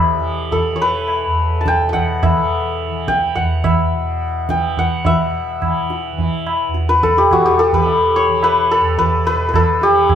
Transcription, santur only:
0.00 1.99 G4 soft
0.00 0.52 A4 soft
0.00 0.81 B4 soft
0.00 0.75 C#5 medium
0.00 0.82 D5 medium
0.00 1.69 E5 medium
0.52 3.45 A4 medium
0.76 3.32 C#5 medium
0.82 3.55 B4 medium
1.61 3.54 A5 medium
1.68 1.89 G5 loud
1.89 3.14 F#5 medium
1.89 1.99 G5 medium
2.23 3.64 E5 medium
3.08 3.41 G5 medium
3.35 4.56 F#5 medium
3.64 5.06 E5 medium
4.50 4.85 G5 medium
4.79 6.93 F#5 medium
5.06 7.36 E5 medium
6.89 7.73 B4 medium
7.03 7.59 A4 medium
7.18 7.38 G4 medium
7.32 7.52 F#4 medium
7.46 9.83 G4 medium
7.59 8.71 A4 medium
7.74 8.43 B4 medium
8.16 10.15 C#5 loud
8.44 8.98 B4 loud
8.71 9.55 A4 loud
8.99 9.26 B4 loud
9.27 9.48 B4 loud
9.49 10.15 B4 medium
9.55 10.15 A4 loud
9.83 10.15 G4 loud

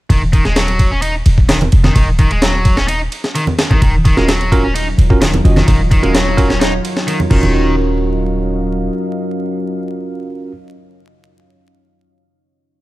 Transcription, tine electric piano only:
4.17 4.30 C#4 medium
4.17 4.30 F4 medium
4.17 4.30 F#4 medium
4.17 4.30 A#4 loud
4.52 4.66 C#4 loud
4.52 4.66 F4 medium
4.52 4.66 F#4 medium
4.52 4.66 A#4 loud
5.10 5.23 C#4 medium
5.10 5.23 F4 medium
5.10 5.23 F#4 medium
5.10 5.23 A#4 loud
5.45 5.59 C#4 medium
5.45 5.59 F4 medium
5.45 5.59 F#4 medium
5.45 5.59 D#5 medium
6.03 6.16 C#4 medium
6.03 6.16 F4 medium
6.03 6.16 F#4 medium
6.03 6.16 A#4 medium
6.37 6.51 C#4 loud
6.37 6.51 F4 medium
6.37 6.51 F#4 medium
6.37 6.51 A#4 loud
7.31 10.51 C#4 medium
7.31 10.51 F4 medium
7.31 10.52 F#4 medium
7.31 10.51 A#4 medium

